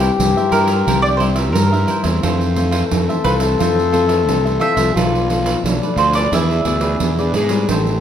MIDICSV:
0, 0, Header, 1, 7, 480
1, 0, Start_track
1, 0, Tempo, 681044
1, 1581, Time_signature, 4, 2, 24, 8
1, 5640, End_track
2, 0, Start_track
2, 0, Title_t, "Mandolin"
2, 0, Program_c, 0, 25
2, 367, Note_on_c, 0, 70, 75
2, 718, Note_off_c, 0, 70, 0
2, 721, Note_on_c, 0, 74, 91
2, 756, Note_off_c, 0, 74, 0
2, 825, Note_on_c, 0, 72, 73
2, 895, Note_off_c, 0, 72, 0
2, 1074, Note_on_c, 0, 70, 64
2, 1421, Note_off_c, 0, 70, 0
2, 2286, Note_on_c, 0, 71, 82
2, 2353, Note_off_c, 0, 71, 0
2, 3251, Note_on_c, 0, 76, 87
2, 3479, Note_off_c, 0, 76, 0
2, 4217, Note_on_c, 0, 72, 68
2, 4331, Note_off_c, 0, 72, 0
2, 4334, Note_on_c, 0, 74, 73
2, 4461, Note_off_c, 0, 74, 0
2, 4470, Note_on_c, 0, 76, 87
2, 5157, Note_off_c, 0, 76, 0
2, 5640, End_track
3, 0, Start_track
3, 0, Title_t, "Cavaquinho"
3, 0, Program_c, 1, 24
3, 0, Note_on_c, 1, 76, 64
3, 72, Note_off_c, 1, 76, 0
3, 260, Note_on_c, 1, 76, 42
3, 270, Note_on_c, 1, 72, 42
3, 275, Note_on_c, 1, 70, 37
3, 361, Note_off_c, 1, 70, 0
3, 363, Note_on_c, 1, 64, 66
3, 368, Note_off_c, 1, 72, 0
3, 369, Note_on_c, 1, 70, 65
3, 370, Note_off_c, 1, 76, 0
3, 377, Note_on_c, 1, 72, 67
3, 380, Note_on_c, 1, 76, 65
3, 470, Note_off_c, 1, 76, 0
3, 478, Note_off_c, 1, 72, 0
3, 478, Note_on_c, 1, 76, 49
3, 482, Note_off_c, 1, 64, 0
3, 485, Note_off_c, 1, 70, 0
3, 486, Note_on_c, 1, 72, 39
3, 493, Note_on_c, 1, 70, 39
3, 599, Note_off_c, 1, 76, 0
3, 603, Note_off_c, 1, 72, 0
3, 606, Note_off_c, 1, 70, 0
3, 611, Note_on_c, 1, 64, 65
3, 616, Note_on_c, 1, 70, 64
3, 622, Note_on_c, 1, 72, 66
3, 627, Note_on_c, 1, 76, 67
3, 837, Note_off_c, 1, 64, 0
3, 841, Note_off_c, 1, 70, 0
3, 845, Note_off_c, 1, 72, 0
3, 845, Note_on_c, 1, 64, 70
3, 848, Note_off_c, 1, 76, 0
3, 850, Note_on_c, 1, 70, 65
3, 854, Note_on_c, 1, 72, 65
3, 856, Note_on_c, 1, 76, 69
3, 916, Note_off_c, 1, 64, 0
3, 918, Note_off_c, 1, 70, 0
3, 920, Note_off_c, 1, 72, 0
3, 921, Note_off_c, 1, 76, 0
3, 954, Note_on_c, 1, 76, 44
3, 965, Note_on_c, 1, 72, 40
3, 972, Note_on_c, 1, 70, 36
3, 1198, Note_off_c, 1, 76, 0
3, 1203, Note_off_c, 1, 72, 0
3, 1207, Note_off_c, 1, 70, 0
3, 1215, Note_on_c, 1, 76, 44
3, 1225, Note_on_c, 1, 72, 38
3, 1231, Note_on_c, 1, 70, 38
3, 1320, Note_on_c, 1, 64, 65
3, 1321, Note_off_c, 1, 70, 0
3, 1327, Note_off_c, 1, 72, 0
3, 1328, Note_off_c, 1, 76, 0
3, 1329, Note_on_c, 1, 70, 60
3, 1335, Note_on_c, 1, 72, 74
3, 1340, Note_on_c, 1, 76, 67
3, 1426, Note_off_c, 1, 76, 0
3, 1434, Note_off_c, 1, 72, 0
3, 1435, Note_on_c, 1, 76, 50
3, 1441, Note_off_c, 1, 64, 0
3, 1441, Note_off_c, 1, 70, 0
3, 1442, Note_on_c, 1, 72, 44
3, 1449, Note_on_c, 1, 70, 34
3, 1558, Note_off_c, 1, 76, 0
3, 1562, Note_off_c, 1, 72, 0
3, 1566, Note_off_c, 1, 70, 0
3, 1570, Note_on_c, 1, 65, 62
3, 1574, Note_on_c, 1, 69, 60
3, 1580, Note_on_c, 1, 72, 67
3, 1586, Note_on_c, 1, 76, 67
3, 1793, Note_off_c, 1, 65, 0
3, 1798, Note_off_c, 1, 69, 0
3, 1801, Note_on_c, 1, 65, 43
3, 1804, Note_off_c, 1, 72, 0
3, 1806, Note_on_c, 1, 69, 45
3, 1807, Note_off_c, 1, 76, 0
3, 1812, Note_on_c, 1, 72, 49
3, 1816, Note_on_c, 1, 76, 50
3, 1903, Note_off_c, 1, 65, 0
3, 1909, Note_off_c, 1, 69, 0
3, 1911, Note_off_c, 1, 72, 0
3, 1911, Note_on_c, 1, 65, 66
3, 1915, Note_off_c, 1, 76, 0
3, 1918, Note_on_c, 1, 69, 64
3, 1920, Note_on_c, 1, 72, 71
3, 1923, Note_on_c, 1, 76, 69
3, 1990, Note_off_c, 1, 65, 0
3, 1993, Note_off_c, 1, 69, 0
3, 1994, Note_off_c, 1, 72, 0
3, 1996, Note_off_c, 1, 76, 0
3, 2179, Note_on_c, 1, 76, 45
3, 2187, Note_on_c, 1, 72, 42
3, 2195, Note_on_c, 1, 69, 39
3, 2282, Note_off_c, 1, 69, 0
3, 2285, Note_on_c, 1, 65, 63
3, 2289, Note_off_c, 1, 72, 0
3, 2291, Note_off_c, 1, 76, 0
3, 2291, Note_on_c, 1, 69, 64
3, 2298, Note_on_c, 1, 72, 66
3, 2299, Note_on_c, 1, 76, 76
3, 2388, Note_off_c, 1, 76, 0
3, 2396, Note_off_c, 1, 72, 0
3, 2397, Note_on_c, 1, 76, 48
3, 2404, Note_off_c, 1, 65, 0
3, 2405, Note_on_c, 1, 72, 41
3, 2406, Note_off_c, 1, 69, 0
3, 2413, Note_on_c, 1, 69, 36
3, 2519, Note_off_c, 1, 76, 0
3, 2523, Note_off_c, 1, 72, 0
3, 2528, Note_off_c, 1, 69, 0
3, 2531, Note_on_c, 1, 65, 67
3, 2539, Note_on_c, 1, 69, 69
3, 2544, Note_on_c, 1, 72, 74
3, 2548, Note_on_c, 1, 76, 76
3, 2756, Note_off_c, 1, 65, 0
3, 2760, Note_off_c, 1, 69, 0
3, 2764, Note_off_c, 1, 72, 0
3, 2765, Note_on_c, 1, 65, 71
3, 2766, Note_off_c, 1, 76, 0
3, 2769, Note_on_c, 1, 69, 71
3, 2773, Note_on_c, 1, 72, 71
3, 2775, Note_on_c, 1, 76, 71
3, 2836, Note_off_c, 1, 65, 0
3, 2839, Note_off_c, 1, 69, 0
3, 2840, Note_off_c, 1, 72, 0
3, 2841, Note_off_c, 1, 76, 0
3, 2875, Note_on_c, 1, 76, 45
3, 2884, Note_on_c, 1, 72, 41
3, 2893, Note_on_c, 1, 69, 32
3, 3119, Note_off_c, 1, 76, 0
3, 3123, Note_off_c, 1, 72, 0
3, 3128, Note_off_c, 1, 69, 0
3, 3137, Note_on_c, 1, 76, 48
3, 3147, Note_on_c, 1, 72, 38
3, 3154, Note_on_c, 1, 69, 35
3, 3238, Note_off_c, 1, 69, 0
3, 3239, Note_on_c, 1, 65, 65
3, 3242, Note_off_c, 1, 72, 0
3, 3246, Note_on_c, 1, 69, 67
3, 3249, Note_off_c, 1, 76, 0
3, 3250, Note_on_c, 1, 72, 75
3, 3257, Note_on_c, 1, 76, 76
3, 3348, Note_off_c, 1, 76, 0
3, 3357, Note_off_c, 1, 72, 0
3, 3357, Note_on_c, 1, 76, 45
3, 3361, Note_off_c, 1, 65, 0
3, 3364, Note_off_c, 1, 69, 0
3, 3365, Note_on_c, 1, 72, 39
3, 3374, Note_on_c, 1, 69, 39
3, 3479, Note_off_c, 1, 76, 0
3, 3484, Note_off_c, 1, 72, 0
3, 3488, Note_off_c, 1, 69, 0
3, 3494, Note_on_c, 1, 65, 60
3, 3501, Note_on_c, 1, 69, 64
3, 3504, Note_on_c, 1, 71, 65
3, 3510, Note_on_c, 1, 74, 65
3, 3721, Note_off_c, 1, 65, 0
3, 3728, Note_off_c, 1, 69, 0
3, 3730, Note_on_c, 1, 65, 47
3, 3733, Note_off_c, 1, 71, 0
3, 3736, Note_off_c, 1, 74, 0
3, 3736, Note_on_c, 1, 69, 47
3, 3743, Note_on_c, 1, 71, 48
3, 3745, Note_on_c, 1, 74, 47
3, 3833, Note_off_c, 1, 65, 0
3, 3837, Note_off_c, 1, 69, 0
3, 3842, Note_off_c, 1, 71, 0
3, 3842, Note_on_c, 1, 65, 64
3, 3843, Note_off_c, 1, 74, 0
3, 3846, Note_on_c, 1, 69, 67
3, 3850, Note_on_c, 1, 71, 71
3, 3851, Note_on_c, 1, 74, 69
3, 3915, Note_off_c, 1, 65, 0
3, 3917, Note_off_c, 1, 69, 0
3, 3919, Note_off_c, 1, 71, 0
3, 3919, Note_off_c, 1, 74, 0
3, 4103, Note_on_c, 1, 74, 46
3, 4110, Note_on_c, 1, 71, 41
3, 4117, Note_on_c, 1, 69, 36
3, 4205, Note_off_c, 1, 69, 0
3, 4207, Note_on_c, 1, 65, 63
3, 4211, Note_off_c, 1, 71, 0
3, 4212, Note_off_c, 1, 74, 0
3, 4213, Note_on_c, 1, 69, 68
3, 4219, Note_on_c, 1, 71, 65
3, 4224, Note_on_c, 1, 74, 71
3, 4311, Note_off_c, 1, 74, 0
3, 4319, Note_on_c, 1, 74, 42
3, 4320, Note_off_c, 1, 71, 0
3, 4325, Note_off_c, 1, 65, 0
3, 4328, Note_off_c, 1, 69, 0
3, 4329, Note_on_c, 1, 71, 41
3, 4335, Note_on_c, 1, 69, 33
3, 4441, Note_off_c, 1, 74, 0
3, 4445, Note_off_c, 1, 71, 0
3, 4448, Note_off_c, 1, 69, 0
3, 4454, Note_on_c, 1, 64, 67
3, 4458, Note_on_c, 1, 68, 67
3, 4466, Note_on_c, 1, 71, 70
3, 4470, Note_on_c, 1, 74, 72
3, 4678, Note_off_c, 1, 64, 0
3, 4683, Note_off_c, 1, 68, 0
3, 4687, Note_off_c, 1, 71, 0
3, 4687, Note_on_c, 1, 64, 66
3, 4691, Note_off_c, 1, 74, 0
3, 4692, Note_on_c, 1, 68, 70
3, 4696, Note_on_c, 1, 71, 63
3, 4699, Note_on_c, 1, 74, 66
3, 4757, Note_off_c, 1, 64, 0
3, 4760, Note_off_c, 1, 68, 0
3, 4762, Note_off_c, 1, 71, 0
3, 4763, Note_off_c, 1, 74, 0
3, 4799, Note_on_c, 1, 74, 43
3, 4808, Note_on_c, 1, 71, 38
3, 4815, Note_on_c, 1, 68, 39
3, 5040, Note_off_c, 1, 74, 0
3, 5045, Note_off_c, 1, 71, 0
3, 5048, Note_off_c, 1, 68, 0
3, 5067, Note_on_c, 1, 74, 42
3, 5076, Note_on_c, 1, 71, 40
3, 5083, Note_on_c, 1, 68, 36
3, 5173, Note_off_c, 1, 68, 0
3, 5173, Note_on_c, 1, 64, 60
3, 5174, Note_off_c, 1, 74, 0
3, 5176, Note_off_c, 1, 71, 0
3, 5181, Note_on_c, 1, 68, 67
3, 5185, Note_on_c, 1, 71, 65
3, 5190, Note_on_c, 1, 74, 72
3, 5277, Note_off_c, 1, 74, 0
3, 5285, Note_on_c, 1, 74, 42
3, 5286, Note_off_c, 1, 71, 0
3, 5287, Note_off_c, 1, 64, 0
3, 5291, Note_off_c, 1, 68, 0
3, 5295, Note_on_c, 1, 71, 37
3, 5305, Note_on_c, 1, 68, 35
3, 5403, Note_off_c, 1, 74, 0
3, 5408, Note_off_c, 1, 71, 0
3, 5413, Note_off_c, 1, 68, 0
3, 5423, Note_on_c, 1, 67, 59
3, 5431, Note_on_c, 1, 72, 61
3, 5435, Note_on_c, 1, 76, 64
3, 5441, Note_on_c, 1, 81, 66
3, 5640, Note_off_c, 1, 67, 0
3, 5640, Note_off_c, 1, 72, 0
3, 5640, Note_off_c, 1, 76, 0
3, 5640, Note_off_c, 1, 81, 0
3, 5640, End_track
4, 0, Start_track
4, 0, Title_t, "Trombone"
4, 0, Program_c, 2, 57
4, 0, Note_on_c, 2, 67, 107
4, 1392, Note_off_c, 2, 67, 0
4, 1588, Note_on_c, 2, 69, 108
4, 3508, Note_on_c, 2, 65, 88
4, 3519, Note_off_c, 2, 69, 0
4, 3981, Note_on_c, 2, 62, 85
4, 3991, Note_off_c, 2, 65, 0
4, 4454, Note_on_c, 2, 64, 81
4, 4465, Note_off_c, 2, 62, 0
4, 4747, Note_off_c, 2, 64, 0
4, 4936, Note_on_c, 2, 68, 81
4, 5161, Note_off_c, 2, 68, 0
4, 5171, Note_on_c, 2, 68, 82
4, 5425, Note_on_c, 2, 69, 99
4, 5436, Note_off_c, 2, 68, 0
4, 5640, Note_off_c, 2, 69, 0
4, 5640, End_track
5, 0, Start_track
5, 0, Title_t, "Nylon-string guitar"
5, 0, Program_c, 3, 24
5, 0, Note_on_c, 3, 48, 54
5, 0, Note_on_c, 3, 55, 48
5, 0, Note_on_c, 3, 58, 46
5, 0, Note_on_c, 3, 64, 58
5, 116, Note_off_c, 3, 48, 0
5, 121, Note_off_c, 3, 55, 0
5, 121, Note_off_c, 3, 58, 0
5, 123, Note_off_c, 3, 64, 0
5, 139, Note_on_c, 3, 43, 47
5, 264, Note_on_c, 3, 55, 53
5, 267, Note_on_c, 3, 58, 53
5, 271, Note_on_c, 3, 64, 61
5, 583, Note_off_c, 3, 55, 0
5, 585, Note_off_c, 3, 58, 0
5, 587, Note_off_c, 3, 64, 0
5, 596, Note_off_c, 3, 43, 0
5, 616, Note_on_c, 3, 48, 49
5, 617, Note_on_c, 3, 55, 50
5, 620, Note_on_c, 3, 58, 49
5, 621, Note_on_c, 3, 64, 52
5, 759, Note_off_c, 3, 55, 0
5, 761, Note_off_c, 3, 58, 0
5, 762, Note_off_c, 3, 64, 0
5, 845, Note_on_c, 3, 55, 52
5, 848, Note_on_c, 3, 58, 46
5, 851, Note_on_c, 3, 64, 51
5, 1075, Note_off_c, 3, 48, 0
5, 1078, Note_off_c, 3, 55, 0
5, 1080, Note_off_c, 3, 58, 0
5, 1080, Note_off_c, 3, 64, 0
5, 1094, Note_on_c, 3, 43, 48
5, 1218, Note_on_c, 3, 55, 59
5, 1222, Note_on_c, 3, 58, 63
5, 1225, Note_on_c, 3, 64, 58
5, 1421, Note_off_c, 3, 55, 0
5, 1423, Note_off_c, 3, 58, 0
5, 1424, Note_off_c, 3, 64, 0
5, 1438, Note_on_c, 3, 52, 54
5, 1442, Note_on_c, 3, 57, 54
5, 1444, Note_on_c, 3, 60, 61
5, 1553, Note_off_c, 3, 43, 0
5, 1578, Note_on_c, 3, 41, 51
5, 1771, Note_off_c, 3, 52, 0
5, 1772, Note_off_c, 3, 57, 0
5, 1774, Note_off_c, 3, 60, 0
5, 1806, Note_on_c, 3, 52, 45
5, 1810, Note_on_c, 3, 57, 52
5, 1813, Note_on_c, 3, 60, 56
5, 2036, Note_off_c, 3, 41, 0
5, 2056, Note_on_c, 3, 48, 49
5, 2135, Note_off_c, 3, 52, 0
5, 2137, Note_off_c, 3, 57, 0
5, 2138, Note_off_c, 3, 60, 0
5, 2182, Note_on_c, 3, 52, 52
5, 2185, Note_on_c, 3, 57, 56
5, 2188, Note_on_c, 3, 60, 52
5, 2503, Note_off_c, 3, 52, 0
5, 2504, Note_off_c, 3, 57, 0
5, 2506, Note_off_c, 3, 60, 0
5, 2515, Note_off_c, 3, 48, 0
5, 2536, Note_on_c, 3, 41, 52
5, 2537, Note_on_c, 3, 52, 53
5, 2538, Note_on_c, 3, 57, 51
5, 2543, Note_on_c, 3, 60, 55
5, 2680, Note_off_c, 3, 52, 0
5, 2682, Note_off_c, 3, 57, 0
5, 2682, Note_off_c, 3, 60, 0
5, 2762, Note_on_c, 3, 52, 54
5, 2766, Note_on_c, 3, 57, 52
5, 2768, Note_on_c, 3, 60, 59
5, 2995, Note_off_c, 3, 41, 0
5, 3018, Note_on_c, 3, 48, 52
5, 3094, Note_off_c, 3, 52, 0
5, 3094, Note_off_c, 3, 57, 0
5, 3096, Note_off_c, 3, 60, 0
5, 3140, Note_on_c, 3, 52, 61
5, 3144, Note_on_c, 3, 57, 54
5, 3147, Note_on_c, 3, 60, 57
5, 3343, Note_off_c, 3, 52, 0
5, 3344, Note_off_c, 3, 57, 0
5, 3346, Note_off_c, 3, 60, 0
5, 3361, Note_on_c, 3, 53, 56
5, 3364, Note_on_c, 3, 57, 58
5, 3369, Note_on_c, 3, 62, 58
5, 3476, Note_off_c, 3, 48, 0
5, 3497, Note_on_c, 3, 47, 53
5, 3693, Note_off_c, 3, 53, 0
5, 3694, Note_off_c, 3, 57, 0
5, 3697, Note_off_c, 3, 62, 0
5, 3730, Note_on_c, 3, 53, 55
5, 3733, Note_on_c, 3, 57, 46
5, 3736, Note_on_c, 3, 62, 59
5, 3955, Note_off_c, 3, 47, 0
5, 3980, Note_on_c, 3, 47, 48
5, 4057, Note_off_c, 3, 53, 0
5, 4059, Note_off_c, 3, 57, 0
5, 4060, Note_off_c, 3, 62, 0
5, 4106, Note_on_c, 3, 53, 56
5, 4110, Note_on_c, 3, 57, 57
5, 4112, Note_on_c, 3, 62, 61
5, 4425, Note_off_c, 3, 53, 0
5, 4426, Note_off_c, 3, 57, 0
5, 4428, Note_off_c, 3, 62, 0
5, 4437, Note_off_c, 3, 47, 0
5, 4460, Note_on_c, 3, 52, 48
5, 4460, Note_on_c, 3, 59, 47
5, 4464, Note_on_c, 3, 62, 41
5, 4467, Note_on_c, 3, 68, 55
5, 4661, Note_off_c, 3, 59, 0
5, 4663, Note_off_c, 3, 62, 0
5, 4666, Note_off_c, 3, 68, 0
5, 4690, Note_on_c, 3, 59, 51
5, 4695, Note_on_c, 3, 62, 48
5, 4697, Note_on_c, 3, 68, 57
5, 4917, Note_off_c, 3, 52, 0
5, 4938, Note_on_c, 3, 47, 45
5, 5017, Note_off_c, 3, 59, 0
5, 5018, Note_off_c, 3, 62, 0
5, 5020, Note_off_c, 3, 68, 0
5, 5064, Note_on_c, 3, 59, 50
5, 5067, Note_on_c, 3, 62, 54
5, 5071, Note_on_c, 3, 68, 57
5, 5264, Note_off_c, 3, 59, 0
5, 5265, Note_off_c, 3, 62, 0
5, 5267, Note_off_c, 3, 68, 0
5, 5281, Note_on_c, 3, 55, 52
5, 5286, Note_on_c, 3, 60, 51
5, 5289, Note_on_c, 3, 64, 58
5, 5395, Note_off_c, 3, 47, 0
5, 5416, Note_on_c, 3, 45, 51
5, 5612, Note_off_c, 3, 55, 0
5, 5613, Note_off_c, 3, 60, 0
5, 5616, Note_off_c, 3, 64, 0
5, 5640, Note_off_c, 3, 45, 0
5, 5640, End_track
6, 0, Start_track
6, 0, Title_t, "Fingered electric bass"
6, 0, Program_c, 4, 33
6, 136, Note_on_c, 4, 36, 86
6, 239, Note_off_c, 4, 36, 0
6, 365, Note_on_c, 4, 43, 85
6, 575, Note_off_c, 4, 43, 0
6, 615, Note_on_c, 4, 36, 86
6, 1091, Note_off_c, 4, 36, 0
6, 1091, Note_on_c, 4, 43, 80
6, 1299, Note_off_c, 4, 43, 0
6, 1440, Note_on_c, 4, 40, 77
6, 1551, Note_off_c, 4, 40, 0
6, 1577, Note_on_c, 4, 41, 79
6, 1987, Note_off_c, 4, 41, 0
6, 2058, Note_on_c, 4, 41, 85
6, 2161, Note_off_c, 4, 41, 0
6, 2287, Note_on_c, 4, 36, 86
6, 2497, Note_off_c, 4, 36, 0
6, 2542, Note_on_c, 4, 41, 89
6, 3017, Note_off_c, 4, 41, 0
6, 3017, Note_on_c, 4, 36, 77
6, 3223, Note_off_c, 4, 36, 0
6, 3360, Note_on_c, 4, 36, 79
6, 3471, Note_off_c, 4, 36, 0
6, 3495, Note_on_c, 4, 35, 77
6, 3906, Note_off_c, 4, 35, 0
6, 3975, Note_on_c, 4, 35, 82
6, 4080, Note_off_c, 4, 35, 0
6, 4203, Note_on_c, 4, 38, 85
6, 4415, Note_off_c, 4, 38, 0
6, 4454, Note_on_c, 4, 40, 92
6, 4683, Note_off_c, 4, 40, 0
6, 4687, Note_on_c, 4, 38, 69
6, 4909, Note_off_c, 4, 38, 0
6, 4938, Note_on_c, 4, 40, 68
6, 5155, Note_off_c, 4, 40, 0
6, 5168, Note_on_c, 4, 44, 74
6, 5390, Note_off_c, 4, 44, 0
6, 5421, Note_on_c, 4, 33, 81
6, 5640, Note_off_c, 4, 33, 0
6, 5640, End_track
7, 0, Start_track
7, 0, Title_t, "Pandeiro"
7, 1, Note_on_c, 9, 54, 61
7, 71, Note_off_c, 9, 54, 0
7, 141, Note_on_c, 9, 54, 71
7, 211, Note_off_c, 9, 54, 0
7, 266, Note_on_c, 9, 54, 31
7, 337, Note_off_c, 9, 54, 0
7, 366, Note_on_c, 9, 54, 54
7, 436, Note_off_c, 9, 54, 0
7, 477, Note_on_c, 9, 54, 61
7, 547, Note_off_c, 9, 54, 0
7, 618, Note_on_c, 9, 54, 72
7, 689, Note_off_c, 9, 54, 0
7, 746, Note_on_c, 9, 54, 29
7, 816, Note_off_c, 9, 54, 0
7, 846, Note_on_c, 9, 54, 48
7, 917, Note_off_c, 9, 54, 0
7, 957, Note_on_c, 9, 54, 58
7, 1027, Note_off_c, 9, 54, 0
7, 1096, Note_on_c, 9, 54, 69
7, 1166, Note_off_c, 9, 54, 0
7, 1224, Note_on_c, 9, 54, 28
7, 1295, Note_off_c, 9, 54, 0
7, 1325, Note_on_c, 9, 54, 50
7, 1396, Note_off_c, 9, 54, 0
7, 1436, Note_on_c, 9, 54, 61
7, 1507, Note_off_c, 9, 54, 0
7, 1574, Note_on_c, 9, 54, 71
7, 1644, Note_off_c, 9, 54, 0
7, 1699, Note_on_c, 9, 54, 29
7, 1770, Note_off_c, 9, 54, 0
7, 1807, Note_on_c, 9, 54, 53
7, 1878, Note_off_c, 9, 54, 0
7, 1920, Note_on_c, 9, 54, 58
7, 1990, Note_off_c, 9, 54, 0
7, 2054, Note_on_c, 9, 54, 70
7, 2124, Note_off_c, 9, 54, 0
7, 2183, Note_on_c, 9, 54, 30
7, 2253, Note_off_c, 9, 54, 0
7, 2287, Note_on_c, 9, 54, 55
7, 2357, Note_off_c, 9, 54, 0
7, 2397, Note_on_c, 9, 54, 64
7, 2467, Note_off_c, 9, 54, 0
7, 2540, Note_on_c, 9, 54, 65
7, 2611, Note_off_c, 9, 54, 0
7, 2673, Note_on_c, 9, 54, 29
7, 2743, Note_off_c, 9, 54, 0
7, 2774, Note_on_c, 9, 54, 50
7, 2845, Note_off_c, 9, 54, 0
7, 2884, Note_on_c, 9, 54, 58
7, 2954, Note_off_c, 9, 54, 0
7, 3021, Note_on_c, 9, 54, 65
7, 3091, Note_off_c, 9, 54, 0
7, 3148, Note_on_c, 9, 54, 29
7, 3218, Note_off_c, 9, 54, 0
7, 3250, Note_on_c, 9, 54, 49
7, 3320, Note_off_c, 9, 54, 0
7, 3363, Note_on_c, 9, 54, 60
7, 3434, Note_off_c, 9, 54, 0
7, 3504, Note_on_c, 9, 54, 72
7, 3575, Note_off_c, 9, 54, 0
7, 3634, Note_on_c, 9, 54, 30
7, 3704, Note_off_c, 9, 54, 0
7, 3736, Note_on_c, 9, 54, 52
7, 3806, Note_off_c, 9, 54, 0
7, 3848, Note_on_c, 9, 54, 59
7, 3918, Note_off_c, 9, 54, 0
7, 3987, Note_on_c, 9, 54, 71
7, 4058, Note_off_c, 9, 54, 0
7, 4110, Note_on_c, 9, 54, 31
7, 4180, Note_off_c, 9, 54, 0
7, 4211, Note_on_c, 9, 54, 53
7, 4281, Note_off_c, 9, 54, 0
7, 4323, Note_on_c, 9, 54, 59
7, 4394, Note_off_c, 9, 54, 0
7, 4459, Note_on_c, 9, 54, 67
7, 4530, Note_off_c, 9, 54, 0
7, 4587, Note_on_c, 9, 54, 29
7, 4657, Note_off_c, 9, 54, 0
7, 4687, Note_on_c, 9, 54, 53
7, 4758, Note_off_c, 9, 54, 0
7, 4799, Note_on_c, 9, 54, 58
7, 4869, Note_off_c, 9, 54, 0
7, 4935, Note_on_c, 9, 54, 67
7, 5005, Note_off_c, 9, 54, 0
7, 5064, Note_on_c, 9, 54, 28
7, 5135, Note_off_c, 9, 54, 0
7, 5172, Note_on_c, 9, 54, 54
7, 5242, Note_off_c, 9, 54, 0
7, 5279, Note_on_c, 9, 54, 60
7, 5350, Note_off_c, 9, 54, 0
7, 5418, Note_on_c, 9, 54, 73
7, 5488, Note_off_c, 9, 54, 0
7, 5544, Note_on_c, 9, 54, 29
7, 5615, Note_off_c, 9, 54, 0
7, 5640, End_track
0, 0, End_of_file